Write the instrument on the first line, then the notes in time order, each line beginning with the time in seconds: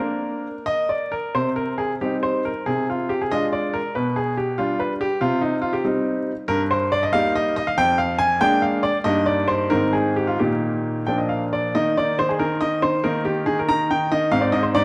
grand piano
Already playing: D4 A#4
0.00 A#3
0.66 D#5
0.89 D5
1.12 A#4
1.35 C3 C5
1.56 A#4
1.78 G#4
2.01 G3 C4 D#4 G4
2.23 C5
2.45 A#4
2.66 C3 G#4
2.90 F4
3.09 G4
3.21 G#4
3.31 G#3 D4 F4 D#5
3.52 D5
3.73 A#4
3.95 B2 B4
4.16 G#4
4.37 G4
4.58 G3 D4 F4
4.80 B4
5.01 G4
5.21 C3 F4
5.42 D#4
5.62 F4
5.73 G4
5.84 G3 C4 D#4
6.48 G2 A#4
6.71 C5
6.92 D5
7.03 D#5
7.13 G3 A#3 D#4 F5
7.35 D#5
7.56 D#5
7.67 F5
7.78 F2 G5
7.98 F5
8.19 G#5
8.41 G#3 A#3 D4 G5
8.62 F5
8.83 D5
9.04 G2 G3 A#3 D#4 D#5
9.26 D5
9.48 C5
9.70 G#2 D#3 C4 D#4 A#4
9.93 G#4
10.16 G4
10.27 F4
10.39 A#2 D#3 A#3 D#4 G4
11.07 A#2 F3 A#3 D4 G5
11.18 D#5
11.29 F5
11.53 D5
11.75 D#3 A#3 D#4 D#5
11.97 D#3 D5
12.19 D#3 C5
12.29 G#4
12.39 D#3 A#4
12.61 D#3 D#5
12.82 D#3 C5
13.04 D#3 A#3 D#4 A#4
13.25 D#3 G4
13.46 D#3 G#4
13.59 A#4
13.69 D#3 A#5
13.91 D#3 G5
14.12 D#3 D#5
14.31 G#2 C4 D#4 F5
14.41 D5
14.52 G#2 D#5
14.63 C5
14.75 G#2 D5